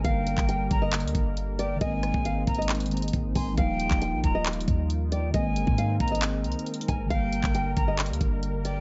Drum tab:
HH |x-----------x-----------x-----------x-----------x---x---x---x-----------x-----------x-----------|x-----------x-----------x-----------x---x---x---x--x--x--x--x--x--x--x--x-----------o-----------|x-----------x-----------x-----------x-----------x---x---x---x-----------x-----------x-----------|x-----------x-----------x-----------x---x---x---x-----------x---x---x---x---x---x---x-----------|
CP |------------------x-----------------------------x-----------------------------------------------|------------------------------------------------x-----------------------------------------------|------------------x-----------------------------x-----------------------------------------------|------------------------------------------------x-----------------------------------------------|
SD |------------------------------------------------------------------------------------------------|------------r-----------------------------------------------------------------------------------|------------------------------------------------------------------------------------------------|------------------------------------------------------------------------------------------------|
BD |o-----------------o-----------------o-----------------------o-----------------------------------|o-----------------o-----------------o-----------------------------------o-----------o-----------|o-----------------o-----------------o-----------------------o-----------------------------------|o-----------------o-----------------o-----------------------------------------------o-----------|

HH |x-----------x-----------x-----------x-----------x---x---x---x-----------x-----------x-----------|
CP |------------------x-----------------------------x-----------------------------------------------|
SD |------------------------------------------------------------------------------------------------|
BD |o-----------------o-----------------o-----------------------o-----------------------------------|